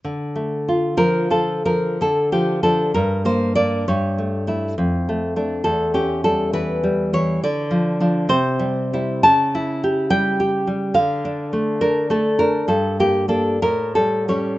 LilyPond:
\new Staff \with { instrumentName = "Nylon-string guitar" } { \time 6/8 \key d \minor \tempo 4. = 67 << { r4. bes'8 a'8 bes'8 | a'8 g'8 a'8 bes'8 c''8 d''8 | cis''4. r4. | a'8 g'8 a'8 b'4 cis''8 |
d''4. c''4. | a''4. g''4. | f''4. bes'8 a'8 bes'8 | a'8 g'8 a'8 bes'8 a'8 cis''8 | } \\ { d8 a8 f'8 f8 f'8 f8 | d8 f8 <f d'>8 g,8 bes8 <bes d'>8 | g,8 a8 <a e'>8 f,8 a8 <a d'>8 | e,8 cis'8 g8 e8 g8 e8 |
d8 f8 <f d'>8 c8 g8 <g e'>8 | cis8 e'8 g'8 g8 g'8 g8 | d8 d'8 a8 d'8 a8 d'8 | g,8 bes8 <bes d'>8 a,8 g8 <g cis'>8 | } >> }